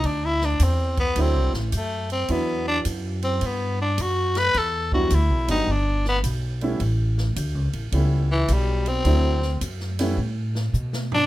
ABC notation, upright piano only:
X:1
M:4/4
L:1/8
Q:"Swing" 1/4=107
K:Dmix
V:1 name="Upright piano"
z4 [F,A,CDE] z3 | [E,F,B,DE]4- [E,F,B,DE] z3 | z [F,G,B,DE] z [F,G,B,DG] z3 [G,A,B,^CE] | z4 [G,A,B,^CE] z3 |
[F,A,CDE] z2 [G,A,B,^CE] z4 |]